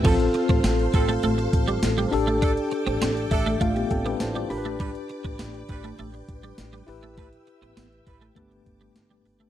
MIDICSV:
0, 0, Header, 1, 8, 480
1, 0, Start_track
1, 0, Tempo, 594059
1, 38, Time_signature, 4, 2, 24, 8
1, 7674, End_track
2, 0, Start_track
2, 0, Title_t, "String machine"
2, 0, Program_c, 0, 50
2, 41, Note_on_c, 0, 77, 71
2, 43, Note_on_c, 0, 72, 72
2, 44, Note_on_c, 0, 69, 76
2, 44, Note_on_c, 0, 84, 87
2, 1703, Note_off_c, 0, 77, 0
2, 1704, Note_off_c, 0, 69, 0
2, 1704, Note_off_c, 0, 72, 0
2, 1704, Note_off_c, 0, 84, 0
2, 1714, Note_on_c, 0, 74, 74
2, 1715, Note_on_c, 0, 79, 71
2, 1715, Note_on_c, 0, 86, 90
2, 1716, Note_on_c, 0, 69, 81
2, 3617, Note_off_c, 0, 86, 0
2, 3618, Note_off_c, 0, 69, 0
2, 3637, Note_on_c, 0, 71, 77
2, 3639, Note_on_c, 0, 86, 91
2, 5524, Note_off_c, 0, 74, 0
2, 5539, Note_off_c, 0, 86, 0
2, 5551, Note_on_c, 0, 88, 92
2, 5552, Note_on_c, 0, 76, 73
2, 6724, Note_off_c, 0, 79, 0
2, 6742, Note_off_c, 0, 88, 0
2, 6743, Note_off_c, 0, 76, 0
2, 6755, Note_on_c, 0, 81, 66
2, 6757, Note_on_c, 0, 79, 66
2, 6757, Note_on_c, 0, 86, 84
2, 7674, Note_off_c, 0, 71, 0
2, 7674, Note_off_c, 0, 79, 0
2, 7674, Note_off_c, 0, 81, 0
2, 7674, Note_off_c, 0, 86, 0
2, 7674, End_track
3, 0, Start_track
3, 0, Title_t, "Tine electric piano"
3, 0, Program_c, 1, 4
3, 0, Control_c, 1, 64, 127
3, 27, Note_on_c, 1, 60, 81
3, 35, Note_on_c, 1, 65, 80
3, 45, Note_on_c, 1, 69, 89
3, 49, Control_c, 1, 64, 0
3, 186, Control_c, 1, 64, 127
3, 1680, Note_off_c, 1, 60, 0
3, 1684, Note_off_c, 1, 65, 0
3, 1689, Note_off_c, 1, 69, 0
3, 1707, Note_on_c, 1, 62, 82
3, 1717, Note_on_c, 1, 67, 77
3, 1725, Note_on_c, 1, 69, 94
3, 1728, Control_c, 1, 64, 0
3, 1874, Control_c, 1, 64, 127
3, 2678, Note_on_c, 1, 76, 71
3, 2888, Note_off_c, 1, 62, 0
3, 2893, Note_off_c, 1, 67, 0
3, 2898, Note_off_c, 1, 69, 0
3, 2901, Note_off_c, 1, 76, 0
3, 2918, Note_on_c, 1, 65, 62
3, 2918, Note_on_c, 1, 77, 78
3, 2924, Note_on_c, 1, 57, 53
3, 3032, Note_off_c, 1, 65, 0
3, 3035, Note_off_c, 1, 57, 0
3, 3036, Note_on_c, 1, 67, 64
3, 3042, Note_on_c, 1, 59, 55
3, 3141, Note_off_c, 1, 77, 0
3, 3151, Note_off_c, 1, 67, 0
3, 3154, Note_off_c, 1, 59, 0
3, 3157, Note_on_c, 1, 69, 70
3, 3157, Note_on_c, 1, 79, 73
3, 3162, Note_on_c, 1, 60, 59
3, 3271, Note_off_c, 1, 69, 0
3, 3274, Note_off_c, 1, 60, 0
3, 3277, Note_on_c, 1, 71, 72
3, 3282, Note_on_c, 1, 62, 60
3, 3381, Note_off_c, 1, 79, 0
3, 3391, Note_off_c, 1, 71, 0
3, 3394, Note_off_c, 1, 62, 0
3, 3398, Note_on_c, 1, 72, 65
3, 3398, Note_on_c, 1, 81, 67
3, 3403, Note_on_c, 1, 64, 55
3, 3512, Note_off_c, 1, 72, 0
3, 3514, Note_off_c, 1, 64, 0
3, 3516, Note_on_c, 1, 74, 65
3, 3522, Note_on_c, 1, 65, 56
3, 3621, Note_off_c, 1, 81, 0
3, 3626, Note_on_c, 1, 62, 82
3, 3636, Note_on_c, 1, 67, 77
3, 3636, Note_on_c, 1, 83, 81
3, 3646, Control_c, 1, 64, 0
3, 3646, Note_on_c, 1, 70, 76
3, 3694, Note_off_c, 1, 70, 0
3, 3699, Note_on_c, 1, 71, 95
3, 3745, Note_off_c, 1, 74, 0
3, 3748, Note_off_c, 1, 65, 0
3, 3784, Control_c, 1, 64, 127
3, 3860, Note_off_c, 1, 83, 0
3, 5520, Note_off_c, 1, 62, 0
3, 5525, Note_off_c, 1, 67, 0
3, 5549, Note_on_c, 1, 64, 87
3, 5556, Note_off_c, 1, 71, 0
3, 5559, Note_on_c, 1, 67, 77
3, 5566, Control_c, 1, 64, 0
3, 5569, Note_on_c, 1, 71, 94
3, 5710, Control_c, 1, 64, 127
3, 6729, Note_off_c, 1, 64, 0
3, 6735, Note_off_c, 1, 67, 0
3, 6739, Note_off_c, 1, 71, 0
3, 6748, Note_on_c, 1, 57, 79
3, 6752, Note_on_c, 1, 59, 68
3, 6756, Note_on_c, 1, 62, 71
3, 6762, Note_on_c, 1, 67, 71
3, 6767, Note_on_c, 1, 71, 85
3, 6768, Control_c, 1, 64, 0
3, 6901, Control_c, 1, 64, 127
3, 7674, Note_off_c, 1, 57, 0
3, 7674, Note_off_c, 1, 59, 0
3, 7674, Note_off_c, 1, 62, 0
3, 7674, Note_off_c, 1, 67, 0
3, 7674, Note_off_c, 1, 71, 0
3, 7674, End_track
4, 0, Start_track
4, 0, Title_t, "Horn section"
4, 0, Program_c, 2, 61
4, 38, Note_on_c, 2, 69, 103
4, 39, Note_on_c, 2, 53, 93
4, 39, Note_on_c, 2, 60, 88
4, 114, Note_off_c, 2, 69, 0
4, 115, Note_off_c, 2, 53, 0
4, 115, Note_off_c, 2, 60, 0
4, 757, Note_on_c, 2, 60, 97
4, 757, Note_on_c, 2, 69, 104
4, 758, Note_on_c, 2, 53, 94
4, 910, Note_off_c, 2, 60, 0
4, 910, Note_off_c, 2, 69, 0
4, 911, Note_off_c, 2, 53, 0
4, 1954, Note_on_c, 2, 62, 93
4, 1955, Note_on_c, 2, 69, 102
4, 2032, Note_off_c, 2, 62, 0
4, 2033, Note_off_c, 2, 69, 0
4, 2677, Note_on_c, 2, 62, 93
4, 2678, Note_on_c, 2, 69, 107
4, 2831, Note_off_c, 2, 62, 0
4, 2831, Note_off_c, 2, 69, 0
4, 3878, Note_on_c, 2, 55, 92
4, 3878, Note_on_c, 2, 71, 96
4, 3879, Note_on_c, 2, 62, 92
4, 3954, Note_off_c, 2, 71, 0
4, 3955, Note_off_c, 2, 55, 0
4, 3955, Note_off_c, 2, 62, 0
4, 4599, Note_on_c, 2, 62, 92
4, 4600, Note_on_c, 2, 55, 97
4, 4600, Note_on_c, 2, 71, 108
4, 4752, Note_off_c, 2, 55, 0
4, 4752, Note_off_c, 2, 62, 0
4, 4752, Note_off_c, 2, 71, 0
4, 5800, Note_on_c, 2, 55, 97
4, 5800, Note_on_c, 2, 64, 93
4, 5800, Note_on_c, 2, 71, 100
4, 5875, Note_off_c, 2, 71, 0
4, 5876, Note_off_c, 2, 55, 0
4, 5876, Note_off_c, 2, 64, 0
4, 6519, Note_on_c, 2, 55, 92
4, 6519, Note_on_c, 2, 71, 109
4, 6520, Note_on_c, 2, 64, 95
4, 6672, Note_off_c, 2, 55, 0
4, 6672, Note_off_c, 2, 64, 0
4, 6672, Note_off_c, 2, 71, 0
4, 7674, End_track
5, 0, Start_track
5, 0, Title_t, "Clean electric guitar"
5, 0, Program_c, 3, 27
5, 40, Note_on_c, 3, 53, 89
5, 114, Note_off_c, 3, 53, 0
5, 399, Note_on_c, 3, 60, 75
5, 473, Note_off_c, 3, 60, 0
5, 521, Note_on_c, 3, 60, 80
5, 594, Note_off_c, 3, 60, 0
5, 877, Note_on_c, 3, 57, 75
5, 952, Note_off_c, 3, 57, 0
5, 999, Note_on_c, 3, 57, 85
5, 1073, Note_off_c, 3, 57, 0
5, 1355, Note_on_c, 3, 55, 76
5, 1430, Note_off_c, 3, 55, 0
5, 1599, Note_on_c, 3, 55, 80
5, 1673, Note_off_c, 3, 55, 0
5, 1836, Note_on_c, 3, 57, 77
5, 1911, Note_off_c, 3, 57, 0
5, 1956, Note_on_c, 3, 62, 91
5, 2031, Note_off_c, 3, 62, 0
5, 2315, Note_on_c, 3, 60, 75
5, 2391, Note_off_c, 3, 60, 0
5, 2438, Note_on_c, 3, 60, 83
5, 2512, Note_off_c, 3, 60, 0
5, 2799, Note_on_c, 3, 57, 78
5, 2873, Note_off_c, 3, 57, 0
5, 2916, Note_on_c, 3, 57, 86
5, 2991, Note_off_c, 3, 57, 0
5, 3278, Note_on_c, 3, 55, 75
5, 3352, Note_off_c, 3, 55, 0
5, 3518, Note_on_c, 3, 55, 79
5, 3593, Note_off_c, 3, 55, 0
5, 3759, Note_on_c, 3, 57, 83
5, 3833, Note_off_c, 3, 57, 0
5, 3879, Note_on_c, 3, 55, 86
5, 3953, Note_off_c, 3, 55, 0
5, 4239, Note_on_c, 3, 59, 72
5, 4313, Note_off_c, 3, 59, 0
5, 4359, Note_on_c, 3, 59, 78
5, 4433, Note_off_c, 3, 59, 0
5, 4720, Note_on_c, 3, 57, 72
5, 4794, Note_off_c, 3, 57, 0
5, 4841, Note_on_c, 3, 57, 82
5, 4915, Note_off_c, 3, 57, 0
5, 5199, Note_on_c, 3, 55, 77
5, 5273, Note_off_c, 3, 55, 0
5, 5437, Note_on_c, 3, 55, 80
5, 5512, Note_off_c, 3, 55, 0
5, 5679, Note_on_c, 3, 57, 84
5, 5753, Note_off_c, 3, 57, 0
5, 5800, Note_on_c, 3, 57, 91
5, 5874, Note_off_c, 3, 57, 0
5, 6160, Note_on_c, 3, 59, 74
5, 6234, Note_off_c, 3, 59, 0
5, 6278, Note_on_c, 3, 59, 80
5, 6353, Note_off_c, 3, 59, 0
5, 6637, Note_on_c, 3, 57, 73
5, 6712, Note_off_c, 3, 57, 0
5, 6758, Note_on_c, 3, 57, 86
5, 6833, Note_off_c, 3, 57, 0
5, 7117, Note_on_c, 3, 55, 80
5, 7192, Note_off_c, 3, 55, 0
5, 7356, Note_on_c, 3, 55, 76
5, 7431, Note_off_c, 3, 55, 0
5, 7596, Note_on_c, 3, 57, 79
5, 7671, Note_off_c, 3, 57, 0
5, 7674, End_track
6, 0, Start_track
6, 0, Title_t, "Upright bass"
6, 0, Program_c, 4, 32
6, 38, Note_on_c, 4, 33, 107
6, 211, Note_off_c, 4, 33, 0
6, 398, Note_on_c, 4, 33, 97
6, 484, Note_off_c, 4, 33, 0
6, 516, Note_on_c, 4, 33, 98
6, 689, Note_off_c, 4, 33, 0
6, 757, Note_on_c, 4, 33, 101
6, 930, Note_off_c, 4, 33, 0
6, 998, Note_on_c, 4, 33, 105
6, 1171, Note_off_c, 4, 33, 0
6, 1237, Note_on_c, 4, 33, 96
6, 1410, Note_off_c, 4, 33, 0
6, 1476, Note_on_c, 4, 33, 104
6, 1649, Note_off_c, 4, 33, 0
6, 1716, Note_on_c, 4, 33, 84
6, 2062, Note_off_c, 4, 33, 0
6, 2318, Note_on_c, 4, 33, 88
6, 2404, Note_off_c, 4, 33, 0
6, 2437, Note_on_c, 4, 33, 88
6, 2610, Note_off_c, 4, 33, 0
6, 2678, Note_on_c, 4, 33, 99
6, 2850, Note_off_c, 4, 33, 0
6, 2916, Note_on_c, 4, 33, 108
6, 3090, Note_off_c, 4, 33, 0
6, 3157, Note_on_c, 4, 33, 108
6, 3330, Note_off_c, 4, 33, 0
6, 3402, Note_on_c, 4, 33, 107
6, 3574, Note_off_c, 4, 33, 0
6, 3639, Note_on_c, 4, 33, 87
6, 3984, Note_off_c, 4, 33, 0
6, 4239, Note_on_c, 4, 33, 80
6, 4325, Note_off_c, 4, 33, 0
6, 4361, Note_on_c, 4, 33, 93
6, 4532, Note_off_c, 4, 33, 0
6, 4598, Note_on_c, 4, 33, 97
6, 4771, Note_off_c, 4, 33, 0
6, 4840, Note_on_c, 4, 33, 107
6, 5012, Note_off_c, 4, 33, 0
6, 5077, Note_on_c, 4, 33, 98
6, 5250, Note_off_c, 4, 33, 0
6, 5319, Note_on_c, 4, 33, 102
6, 5491, Note_off_c, 4, 33, 0
6, 5559, Note_on_c, 4, 33, 91
6, 5904, Note_off_c, 4, 33, 0
6, 6156, Note_on_c, 4, 33, 87
6, 6243, Note_off_c, 4, 33, 0
6, 6278, Note_on_c, 4, 33, 96
6, 6451, Note_off_c, 4, 33, 0
6, 6518, Note_on_c, 4, 33, 94
6, 6691, Note_off_c, 4, 33, 0
6, 6757, Note_on_c, 4, 31, 109
6, 6930, Note_off_c, 4, 31, 0
6, 6999, Note_on_c, 4, 31, 91
6, 7171, Note_off_c, 4, 31, 0
6, 7238, Note_on_c, 4, 31, 103
6, 7410, Note_off_c, 4, 31, 0
6, 7478, Note_on_c, 4, 31, 84
6, 7651, Note_off_c, 4, 31, 0
6, 7674, End_track
7, 0, Start_track
7, 0, Title_t, "Muted clean electric guitar strokes"
7, 279, Note_on_c, 9, 29, 46
7, 360, Note_off_c, 9, 29, 0
7, 759, Note_on_c, 9, 29, 45
7, 839, Note_off_c, 9, 29, 0
7, 1116, Note_on_c, 9, 29, 44
7, 1197, Note_off_c, 9, 29, 0
7, 1716, Note_on_c, 9, 29, 48
7, 1797, Note_off_c, 9, 29, 0
7, 2195, Note_on_c, 9, 29, 45
7, 2276, Note_off_c, 9, 29, 0
7, 2677, Note_on_c, 9, 29, 46
7, 2758, Note_off_c, 9, 29, 0
7, 3038, Note_on_c, 9, 29, 42
7, 3119, Note_off_c, 9, 29, 0
7, 3639, Note_on_c, 9, 29, 49
7, 3720, Note_off_c, 9, 29, 0
7, 4119, Note_on_c, 9, 29, 47
7, 4200, Note_off_c, 9, 29, 0
7, 4601, Note_on_c, 9, 29, 43
7, 4681, Note_off_c, 9, 29, 0
7, 4960, Note_on_c, 9, 29, 43
7, 5040, Note_off_c, 9, 29, 0
7, 5559, Note_on_c, 9, 29, 45
7, 5640, Note_off_c, 9, 29, 0
7, 6038, Note_on_c, 9, 29, 44
7, 6119, Note_off_c, 9, 29, 0
7, 6518, Note_on_c, 9, 29, 43
7, 6599, Note_off_c, 9, 29, 0
7, 6877, Note_on_c, 9, 29, 42
7, 6958, Note_off_c, 9, 29, 0
7, 7478, Note_on_c, 9, 29, 44
7, 7559, Note_off_c, 9, 29, 0
7, 7674, End_track
8, 0, Start_track
8, 0, Title_t, "Drums"
8, 37, Note_on_c, 9, 36, 114
8, 37, Note_on_c, 9, 49, 81
8, 117, Note_off_c, 9, 49, 0
8, 118, Note_off_c, 9, 36, 0
8, 159, Note_on_c, 9, 42, 53
8, 240, Note_off_c, 9, 42, 0
8, 275, Note_on_c, 9, 42, 72
8, 356, Note_off_c, 9, 42, 0
8, 397, Note_on_c, 9, 42, 49
8, 398, Note_on_c, 9, 36, 101
8, 478, Note_off_c, 9, 36, 0
8, 478, Note_off_c, 9, 42, 0
8, 517, Note_on_c, 9, 38, 110
8, 517, Note_on_c, 9, 42, 80
8, 517, Note_on_c, 9, 54, 68
8, 598, Note_off_c, 9, 38, 0
8, 598, Note_off_c, 9, 42, 0
8, 598, Note_off_c, 9, 54, 0
8, 641, Note_on_c, 9, 42, 43
8, 722, Note_off_c, 9, 42, 0
8, 755, Note_on_c, 9, 42, 76
8, 757, Note_on_c, 9, 36, 96
8, 836, Note_off_c, 9, 42, 0
8, 838, Note_off_c, 9, 36, 0
8, 880, Note_on_c, 9, 42, 55
8, 961, Note_off_c, 9, 42, 0
8, 995, Note_on_c, 9, 42, 92
8, 1076, Note_off_c, 9, 42, 0
8, 1119, Note_on_c, 9, 42, 50
8, 1200, Note_off_c, 9, 42, 0
8, 1238, Note_on_c, 9, 36, 89
8, 1238, Note_on_c, 9, 42, 67
8, 1319, Note_off_c, 9, 36, 0
8, 1319, Note_off_c, 9, 42, 0
8, 1358, Note_on_c, 9, 42, 64
8, 1439, Note_off_c, 9, 42, 0
8, 1476, Note_on_c, 9, 38, 126
8, 1479, Note_on_c, 9, 42, 111
8, 1479, Note_on_c, 9, 54, 69
8, 1557, Note_off_c, 9, 38, 0
8, 1560, Note_off_c, 9, 42, 0
8, 1560, Note_off_c, 9, 54, 0
8, 1601, Note_on_c, 9, 42, 56
8, 1682, Note_off_c, 9, 42, 0
8, 1718, Note_on_c, 9, 46, 75
8, 1799, Note_off_c, 9, 46, 0
8, 1839, Note_on_c, 9, 42, 50
8, 1920, Note_off_c, 9, 42, 0
8, 1957, Note_on_c, 9, 36, 115
8, 1957, Note_on_c, 9, 42, 96
8, 2037, Note_off_c, 9, 42, 0
8, 2038, Note_off_c, 9, 36, 0
8, 2078, Note_on_c, 9, 42, 56
8, 2159, Note_off_c, 9, 42, 0
8, 2192, Note_on_c, 9, 42, 70
8, 2273, Note_off_c, 9, 42, 0
8, 2317, Note_on_c, 9, 42, 50
8, 2398, Note_off_c, 9, 42, 0
8, 2437, Note_on_c, 9, 38, 108
8, 2437, Note_on_c, 9, 42, 77
8, 2437, Note_on_c, 9, 54, 70
8, 2517, Note_off_c, 9, 42, 0
8, 2518, Note_off_c, 9, 38, 0
8, 2518, Note_off_c, 9, 54, 0
8, 2560, Note_on_c, 9, 42, 43
8, 2641, Note_off_c, 9, 42, 0
8, 2674, Note_on_c, 9, 42, 79
8, 2677, Note_on_c, 9, 36, 93
8, 2755, Note_off_c, 9, 42, 0
8, 2758, Note_off_c, 9, 36, 0
8, 2799, Note_on_c, 9, 42, 56
8, 2880, Note_off_c, 9, 42, 0
8, 2916, Note_on_c, 9, 36, 96
8, 2916, Note_on_c, 9, 42, 91
8, 2997, Note_off_c, 9, 36, 0
8, 2997, Note_off_c, 9, 42, 0
8, 3040, Note_on_c, 9, 42, 50
8, 3120, Note_off_c, 9, 42, 0
8, 3156, Note_on_c, 9, 42, 71
8, 3157, Note_on_c, 9, 36, 88
8, 3237, Note_off_c, 9, 42, 0
8, 3238, Note_off_c, 9, 36, 0
8, 3278, Note_on_c, 9, 42, 61
8, 3359, Note_off_c, 9, 42, 0
8, 3394, Note_on_c, 9, 38, 119
8, 3397, Note_on_c, 9, 42, 110
8, 3397, Note_on_c, 9, 54, 70
8, 3475, Note_off_c, 9, 38, 0
8, 3478, Note_off_c, 9, 42, 0
8, 3478, Note_off_c, 9, 54, 0
8, 3520, Note_on_c, 9, 42, 57
8, 3600, Note_off_c, 9, 42, 0
8, 3638, Note_on_c, 9, 46, 80
8, 3719, Note_off_c, 9, 46, 0
8, 3760, Note_on_c, 9, 42, 51
8, 3841, Note_off_c, 9, 42, 0
8, 3877, Note_on_c, 9, 42, 90
8, 3878, Note_on_c, 9, 36, 113
8, 3958, Note_off_c, 9, 42, 0
8, 3959, Note_off_c, 9, 36, 0
8, 4000, Note_on_c, 9, 42, 56
8, 4081, Note_off_c, 9, 42, 0
8, 4115, Note_on_c, 9, 42, 73
8, 4196, Note_off_c, 9, 42, 0
8, 4236, Note_on_c, 9, 42, 51
8, 4238, Note_on_c, 9, 36, 99
8, 4317, Note_off_c, 9, 42, 0
8, 4319, Note_off_c, 9, 36, 0
8, 4356, Note_on_c, 9, 38, 113
8, 4356, Note_on_c, 9, 42, 81
8, 4357, Note_on_c, 9, 54, 71
8, 4437, Note_off_c, 9, 38, 0
8, 4437, Note_off_c, 9, 42, 0
8, 4437, Note_off_c, 9, 54, 0
8, 4479, Note_on_c, 9, 42, 44
8, 4560, Note_off_c, 9, 42, 0
8, 4595, Note_on_c, 9, 42, 76
8, 4598, Note_on_c, 9, 36, 91
8, 4675, Note_off_c, 9, 42, 0
8, 4678, Note_off_c, 9, 36, 0
8, 4719, Note_on_c, 9, 42, 56
8, 4800, Note_off_c, 9, 42, 0
8, 4837, Note_on_c, 9, 42, 90
8, 4917, Note_off_c, 9, 42, 0
8, 4959, Note_on_c, 9, 42, 49
8, 5040, Note_off_c, 9, 42, 0
8, 5078, Note_on_c, 9, 42, 70
8, 5079, Note_on_c, 9, 36, 91
8, 5159, Note_off_c, 9, 36, 0
8, 5159, Note_off_c, 9, 42, 0
8, 5198, Note_on_c, 9, 42, 60
8, 5279, Note_off_c, 9, 42, 0
8, 5316, Note_on_c, 9, 38, 126
8, 5319, Note_on_c, 9, 42, 115
8, 5319, Note_on_c, 9, 54, 67
8, 5397, Note_off_c, 9, 38, 0
8, 5400, Note_off_c, 9, 42, 0
8, 5400, Note_off_c, 9, 54, 0
8, 5439, Note_on_c, 9, 42, 54
8, 5520, Note_off_c, 9, 42, 0
8, 5557, Note_on_c, 9, 46, 79
8, 5638, Note_off_c, 9, 46, 0
8, 5679, Note_on_c, 9, 42, 49
8, 5760, Note_off_c, 9, 42, 0
8, 5797, Note_on_c, 9, 42, 96
8, 5798, Note_on_c, 9, 36, 114
8, 5878, Note_off_c, 9, 42, 0
8, 5879, Note_off_c, 9, 36, 0
8, 5920, Note_on_c, 9, 42, 54
8, 6000, Note_off_c, 9, 42, 0
8, 6036, Note_on_c, 9, 42, 73
8, 6116, Note_off_c, 9, 42, 0
8, 6161, Note_on_c, 9, 42, 51
8, 6242, Note_off_c, 9, 42, 0
8, 6278, Note_on_c, 9, 42, 75
8, 6279, Note_on_c, 9, 38, 112
8, 6279, Note_on_c, 9, 54, 69
8, 6359, Note_off_c, 9, 42, 0
8, 6360, Note_off_c, 9, 38, 0
8, 6360, Note_off_c, 9, 54, 0
8, 6403, Note_on_c, 9, 42, 44
8, 6484, Note_off_c, 9, 42, 0
8, 6517, Note_on_c, 9, 42, 74
8, 6519, Note_on_c, 9, 36, 92
8, 6598, Note_off_c, 9, 42, 0
8, 6599, Note_off_c, 9, 36, 0
8, 6640, Note_on_c, 9, 42, 55
8, 6721, Note_off_c, 9, 42, 0
8, 6757, Note_on_c, 9, 36, 89
8, 6757, Note_on_c, 9, 42, 86
8, 6838, Note_off_c, 9, 36, 0
8, 6838, Note_off_c, 9, 42, 0
8, 6880, Note_on_c, 9, 42, 45
8, 6961, Note_off_c, 9, 42, 0
8, 6999, Note_on_c, 9, 36, 84
8, 6999, Note_on_c, 9, 42, 67
8, 7080, Note_off_c, 9, 36, 0
8, 7080, Note_off_c, 9, 42, 0
8, 7118, Note_on_c, 9, 42, 60
8, 7199, Note_off_c, 9, 42, 0
8, 7237, Note_on_c, 9, 38, 119
8, 7240, Note_on_c, 9, 42, 112
8, 7240, Note_on_c, 9, 54, 69
8, 7318, Note_off_c, 9, 38, 0
8, 7320, Note_off_c, 9, 42, 0
8, 7321, Note_off_c, 9, 54, 0
8, 7359, Note_on_c, 9, 42, 51
8, 7440, Note_off_c, 9, 42, 0
8, 7478, Note_on_c, 9, 46, 77
8, 7559, Note_off_c, 9, 46, 0
8, 7598, Note_on_c, 9, 42, 47
8, 7674, Note_off_c, 9, 42, 0
8, 7674, End_track
0, 0, End_of_file